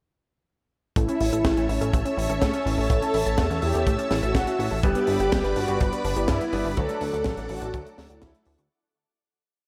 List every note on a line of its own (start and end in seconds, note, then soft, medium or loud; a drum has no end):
0.96 1.07 A1 loud
0.96 1.01 A3 loud
0.96 1.28 E4 loud
0.96 4.80 C#5 medium
0.96 4.80 E5 medium
0.96 4.80 A5 medium
0.96 4.80 E6 medium
0.96 kick loud
0.96 closed hi-hat loud
1.08 1.15 C#4 medium
1.08 closed hi-hat medium
1.20 1.31 A1 medium
1.20 1.31 E4 medium
1.20 open hi-hat loud
1.33 1.43 A1 medium
1.33 1.65 E4 loud
1.33 1.43 A4 medium
1.33 closed hi-hat medium
1.45 1.55 A1 medium
1.45 1.49 A3 loud
1.45 kick loud
1.45 snare loud
1.45 closed hi-hat medium
1.57 1.67 A1 medium
1.57 1.64 C#4 medium
1.57 closed hi-hat medium
1.69 1.79 A1 medium
1.69 2.01 C#4 loud
1.69 1.79 E4 medium
1.69 open hi-hat medium
1.81 1.91 A1 medium
1.81 1.91 A4 medium
1.81 closed hi-hat medium
1.93 2.04 A1 loud
1.93 1.97 A3 loud
1.93 kick loud
1.93 closed hi-hat loud
2.05 2.12 C#4 medium
2.05 closed hi-hat medium
2.17 2.28 A1 medium
2.17 2.28 E4 medium
2.17 open hi-hat loud
2.29 2.40 A1 medium
2.29 2.80 C#4 loud
2.29 2.40 A4 medium
2.29 closed hi-hat medium
2.42 2.52 A2 loud
2.42 2.46 A3 loud
2.42 kick loud
2.42 snare loud
2.42 closed hi-hat loud
2.53 2.61 C#4 medium
2.53 closed hi-hat medium
2.66 2.76 A1 loud
2.66 2.76 E4 medium
2.66 open hi-hat medium
2.78 2.88 A1 medium
2.78 2.88 A4 medium
2.90 3.00 A1 loud
2.90 2.94 A3 loud
2.90 3.22 A4 loud
2.90 kick loud
2.90 closed hi-hat loud
3.02 3.09 C#4 medium
3.02 closed hi-hat medium
3.14 3.24 A1 medium
3.14 3.24 E4 medium
3.14 open hi-hat loud
3.26 3.37 A1 medium
3.26 3.37 A4 medium
3.26 3.58 A4 loud
3.26 closed hi-hat medium
3.38 3.49 E2 loud
3.38 3.42 A3 loud
3.38 kick loud
3.38 snare loud
3.38 closed hi-hat loud
3.50 3.61 E2 medium
3.50 3.57 C#4 medium
3.50 closed hi-hat medium
3.62 3.73 E2 medium
3.62 3.73 E4 medium
3.62 3.95 G4 loud
3.62 open hi-hat loud
3.74 3.85 E2 medium
3.74 3.85 A4 medium
3.74 closed hi-hat medium
3.86 3.97 A1 loud
3.86 3.91 A3 loud
3.86 kick loud
3.86 closed hi-hat loud
3.98 4.06 C#4 medium
3.98 closed hi-hat medium
4.11 4.21 A1 medium
4.11 4.21 E4 medium
4.11 snare medium
4.11 open hi-hat loud
4.23 4.33 A1 medium
4.23 4.74 F#4 loud
4.23 4.33 A4 medium
4.23 closed hi-hat medium
4.35 4.45 A1 loud
4.35 4.39 A3 loud
4.35 kick loud
4.35 snare loud
4.35 closed hi-hat loud
4.47 4.54 C#4 medium
4.47 closed hi-hat medium
4.59 4.70 A1 loud
4.59 4.70 E4 medium
4.59 open hi-hat loud
4.71 4.82 A1 medium
4.71 4.82 A4 medium
4.83 4.94 G1 loud
4.83 4.88 G3 loud
4.83 6.50 G3 medium
4.83 6.50 B3 medium
4.83 6.50 D4 medium
4.83 5.15 G4 medium
4.83 6.50 B4 medium
4.83 6.75 B4 medium
4.83 8.67 D5 medium
4.83 6.75 B5 medium
4.83 6.75 D6 medium
4.83 kick loud
4.83 closed hi-hat loud
4.95 5.02 B3 medium
4.95 closed hi-hat medium
5.07 5.18 G1 medium
5.07 5.18 D4 medium
5.07 open hi-hat loud
5.20 5.30 G1 medium
5.20 5.52 G4 loud
5.20 5.30 G4 medium
5.20 closed hi-hat medium
5.32 5.43 G1 loud
5.32 5.36 G3 loud
5.32 kick loud
5.32 snare loud
5.32 closed hi-hat loud
5.44 5.54 G1 medium
5.44 5.51 B3 medium
5.44 closed hi-hat medium
5.56 5.66 G1 medium
5.56 5.66 D4 medium
5.56 5.88 F#4 medium
5.56 open hi-hat loud
5.68 5.79 G1 medium
5.68 5.79 G4 medium
5.68 closed hi-hat medium
5.80 5.91 G1 medium
5.80 5.84 G3 loud
5.80 kick loud
5.80 closed hi-hat medium
5.92 5.99 B3 medium
5.92 closed hi-hat medium
6.04 6.15 G1 loud
6.04 6.15 D4 medium
6.04 open hi-hat loud
6.16 6.27 G1 medium
6.16 6.67 E4 loud
6.16 6.27 G4 medium
6.16 closed hi-hat medium
6.28 6.39 G2 loud
6.28 6.33 G3 loud
6.28 kick loud
6.28 snare loud
6.28 closed hi-hat loud
6.41 6.48 B3 medium
6.41 closed hi-hat medium
6.53 6.63 G1 loud
6.53 6.74 G3 medium
6.53 6.74 B3 medium
6.53 6.63 D4 medium
6.53 6.74 D4 medium
6.53 6.74 B4 loud
6.53 open hi-hat medium
6.65 6.75 G1 medium
6.65 6.75 G4 medium
6.77 6.88 D2 loud
6.77 6.81 F#3 loud
6.77 7.71 F#3 loud
6.77 7.71 A3 medium
6.77 7.71 D4 medium
6.77 7.09 A4 loud
6.77 8.69 A4 medium
6.77 7.71 A4 loud
6.77 8.69 F#5 medium
6.77 8.69 D6 medium
6.77 kick loud
6.77 closed hi-hat loud
6.89 6.96 A3 medium
6.89 closed hi-hat medium
7.01 7.12 D2 medium
7.01 7.12 D4 medium
7.01 open hi-hat loud
7.13 7.24 D2 medium
7.13 7.24 F#4 medium
7.13 7.45 A4 loud
7.13 closed hi-hat medium
7.24 7.36 A1 loud
7.24 7.30 F#3 loud
7.24 kick loud
7.24 snare loud
7.24 closed hi-hat loud
7.37 7.48 A1 medium
7.37 7.44 A3 medium
7.37 closed hi-hat soft
7.49 7.60 A1 medium
7.49 7.60 D4 medium
7.49 7.82 F#4 loud
7.49 open hi-hat loud
7.61 7.72 A1 medium
7.61 7.72 F#4 medium
7.61 closed hi-hat medium
7.74 7.84 D2 loud
7.74 7.78 F#3 loud
7.74 8.44 F#3 medium
7.74 8.44 A3 medium
7.74 8.44 D4 medium
7.74 8.44 A4 medium
7.74 kick loud
7.74 closed hi-hat loud
7.86 7.93 A3 medium
7.86 closed hi-hat medium
7.98 8.08 D2 medium
7.98 8.08 D4 medium
7.98 snare medium
7.98 open hi-hat loud
8.10 8.20 D2 medium
8.10 8.61 E4 loud
8.10 8.20 F#4 medium
8.10 closed hi-hat medium
8.22 8.33 D2 loud
8.22 8.26 F#3 loud
8.22 kick loud
8.22 snare loud
8.22 closed hi-hat loud
8.34 8.41 A3 medium
8.34 closed hi-hat medium
8.45 8.57 D2 loud
8.45 8.57 D4 medium
8.45 open hi-hat medium
8.58 8.69 D2 medium
8.58 8.69 F#4 medium
8.58 closed hi-hat medium